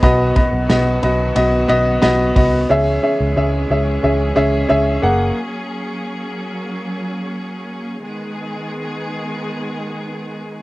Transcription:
<<
  \new Staff \with { instrumentName = "Grand piano" } { \time 4/4 \key gis \minor \tempo 4 = 90 <b fis' dis''>8 <b fis' dis''>8 <b fis' dis''>8 <b fis' dis''>8 <b fis' dis''>8 <b fis' dis''>8 <b fis' dis''>8 <b fis' dis''>8 | <cis' gis' e''>8 <cis' gis' e''>8 <cis' gis' e''>8 <cis' gis' e''>8 <cis' gis' e''>8 <cis' gis' e''>8 <cis' gis' e''>8 <ais gis' fis''>8 | r1 | r1 | }
  \new Staff \with { instrumentName = "Grand piano" } { \clef bass \time 4/4 \key gis \minor b,4. r2 r8 | cis4. r2 r8 | r1 | r1 | }
  \new Staff \with { instrumentName = "String section" } { \time 4/4 \key gis \minor << { <b fis'>1 | <cis' gis'>1~ | <cis' gis'>1 | <dis gis b gis'>1 | } \\ { <dis fis>1 | <e gis>2.~ <e gis>8 <fis ais>8~ | <fis ais>1 | r1 | } >> }
  \new Staff \with { instrumentName = "Picked electric bass" } { \clef bass \time 4/4 \key gis \minor b,,8 r16 b,,16 b,,8 b,,8 b,,8 b,,8 b,,8 bis,,8 | cis,8 r16 cis,16 cis,8 cis,8 cis,8 cis,8 cis,8 fis,,8 | r1 | r1 | }
  \new DrumStaff \with { instrumentName = "Drums" } \drummode { \time 4/4 <hhp bd cymr>8 <bd cymr>8 <cymr sn>8 cymr8 cymr8 cymr8 <cymr sn>8 <hho bd cymr>8 | r4 r4 r4 r4 | r4 r4 r4 r4 | r4 r4 r4 r4 | }
>>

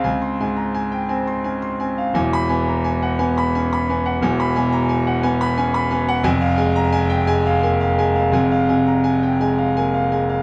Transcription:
<<
  \new Staff \with { instrumentName = "Grand piano" } { \time 6/8 \key f \minor \tempo 4. = 57 << { r2. | r16 b''8 r2 r16 | r2. | r8. bes''16 r2 |
r2. | } \\ { <f'' aes''>16 c'''16 aes''16 bes''16 aes''16 g''16 aes''16 c'''16 aes''16 c'''16 aes''16 f''16 | gis''8 gis''16 bes''16 gis''16 fis''16 gis''16 b''16 gis''16 b''16 gis''16 fis''16 | gis''16 b''16 gis''16 bes''16 gis''16 fis''16 gis''16 b''16 gis''16 b''16 gis''16 fis''16 | aes''16 f''16 aes''8 aes''16 g''16 aes''16 f''16 aes''16 f''16 aes''16 f''16 |
aes''16 f''16 aes''16 bes''16 aes''16 g''16 aes''16 f''16 aes''16 f''16 aes''16 f''16 | } >> }
  \new Staff \with { instrumentName = "Grand piano" } { \clef bass \time 6/8 \key f \minor <des, c'>8 aes,4 c'8 des'8 c'8 | <e,, e,>8 b4 b8 des'8 b8 | <e,, e,>8 b,4 b8 des'8 b8 | <f,, f,>8 aes4 aes8 bes8 aes8 |
<f,, f,>8 c4 aes8 bes8 aes8 | }
>>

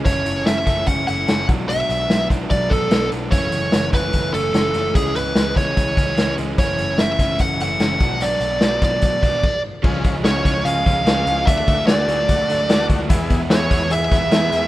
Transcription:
<<
  \new Staff \with { instrumentName = "Lead electric guitar" } { \time 4/4 \key fis \minor \tempo 4 = 147 cis''4 e''4 fis''8 fis''4 r8 | e''4. r8 d''8 a'4 r8 | cis''4. b'4 a'4. | gis'8 b'4 cis''2 r8 |
cis''4 e''4 fis''8 fis''4. | d''4. d''2 r8 | r4 cis''4 eis''2 | e''4 d''2~ d''8 r8 |
r4 cis''4 e''2 | }
  \new Staff \with { instrumentName = "Transistor combo organ" } { \time 4/4 \key fis \minor r1 | r1 | r1 | r1 |
r1 | r1 | <cis' eis' gis'>4 <cis' eis' gis'>4 <cis' eis' gis'>4 <cis' eis' gis'>4 | <d' fis' a'>4 <d' fis' gis'>4 <d' fis' a'>4 <d' fis' a'>4 |
<b e' gis'>4 <b e' gis'>4 <b e' gis'>4 <b e' gis'>4 | }
  \new Staff \with { instrumentName = "Clean electric guitar" } { \time 4/4 \key fis \minor <cis' a'>8 e'8 cis'8 a'8 cis'8 e'8 a'8 fis8 | <fis d'>8 b8 fis8 d'8 fis8 b8 d'8 b8 | <e cis'>8 a8 e8 cis'8 e8 a8 cis'8 a8 | <e cis'>8 gis8 e8 b16 cis'16 e8 gis8 cis'8 gis8 |
<e cis'>8 a8 e8 cis'8 e8 a8 cis'8 fis8 | <fis d'>8 a16 b16 fis8 d'8 fis8 b8 r4 | eis8 eis8 cis'8 eis8 cis'8 eis8 gis8 cis'8 | a8 a8 fis'8 a8 fis'8 a8 d'8 fis'8 |
e8 b8 fis'16 gis'16 b8 gis'8 b8 e'8 gis'8 | }
  \new Staff \with { instrumentName = "Overdriven electric guitar" } { \clef bass \time 4/4 \key fis \minor <fis, cis e a cis'>4. <cis e a cis'>4 <cis e a cis'>16 <e a cis'>16 <cis e a cis'>8 <b, fis b d'>8 | <b, fis b d'>4. <b, fis b d'>4 <b, fis b d'>16 <fis b d'>16 <b, fis b d'>8 <b, fis b d'>8 | <fis, cis e a cis'>4. <cis e a cis'>4 <cis e a cis'>16 <e a cis'>16 <cis e a cis'>8 <cis e a cis'>8 | <cis e gis cis'>4. <cis e gis cis'>4 <cis e gis cis'>16 <e gis cis'>16 <cis e gis cis'>8 <cis e gis cis'>8 |
<fis, cis e a cis'>4. <cis e a cis'>4 <cis e a cis'>16 <e a cis'>16 <cis e a cis'>8 <b, fis b d'>8 | <b, fis b d'>4. <b, fis b d'>4 <b, fis b d'>16 <fis b d'>16 r4 | <cis eis gis cis'>8. <eis gis cis'>8. <cis eis gis cis'>4 <cis eis gis cis'>8 <cis eis gis cis'>8. <eis gis cis'>16 | <d fis a d'>8. <fis a d'>8. <d fis a d'>4 <d fis a d'>8 <d fis a d'>8. <fis a d'>16 |
<e gis b e'>8. <gis b e'>8. <e gis b e'>4 <e gis b e'>8 <e gis b e'>8. <b e'>16 | }
  \new Staff \with { instrumentName = "Picked electric bass" } { \clef bass \time 4/4 \key fis \minor fis,,8 fis,,8 fis,,8 fis,,8 fis,,8 fis,,8 fis,,8 b,,8~ | b,,8 b,,8 b,,8 b,,8 b,,8 b,,8 b,,8 b,,8 | fis,,8 fis,,8 fis,,8 fis,,8 fis,,8 fis,,8 fis,,8 fis,,8 | cis,8 cis,8 cis,8 cis,8 cis,8 cis,8 cis,8 cis,8 |
fis,,8 fis,,8 fis,,8 fis,,8 fis,,8 fis,,8 fis,,8 b,,8~ | b,,8 b,,8 b,,8 b,,8 b,,8 b,,8 r4 | cis,8 cis,8 cis,8 cis,8 cis,8 cis,8 cis,8 cis,8 | d,8 d,8 d,8 d,8 d,8 d,8 d,8 d,8 |
e,8 e,8 e,8 e,8 e,8 e,8 e,8 e,8 | }
  \new DrumStaff \with { instrumentName = "Drums" } \drummode { \time 4/4 <hh bd>8 hh8 <hh sn>8 <hh bd>8 <hh bd>8 hh8 <hh sn>8 <hh bd>8 | hh8 hh8 <hh sn>8 <hh bd>8 <hh bd>8 <hh bd>8 <hh sn>8 hh8 | <hh bd>8 hh8 <hh sn>8 <hh bd>8 <hh bd>8 hh8 <hh sn>8 hh8 | <hh bd>8 hh8 <hh sn>8 <hh bd>8 <hh bd>8 <hh bd>8 <hh sn>8 hh8 |
<hh bd>8 hh8 <hh sn>8 <hh bd>8 <hh bd>8 hh8 <hh sn>8 <hh bd>8 | hh8 hh8 <hh sn>8 <hh bd>8 <hh bd>8 <hh bd>8 <cymc bd>4 | <cymc bd>8 <hh bd>8 <hh sn>8 <hh bd>8 hh8 <hh bd>8 <hh sn>8 hh8 | <hh bd>8 <hh bd>8 <hh sn>8 hh8 <hh bd>8 hh8 <hh sn>8 <hh bd>8 |
<hh bd>8 <hh bd>8 <hh sn>8 <hh bd>8 hh8 <hh bd>8 <hh sn>8 hh8 | }
>>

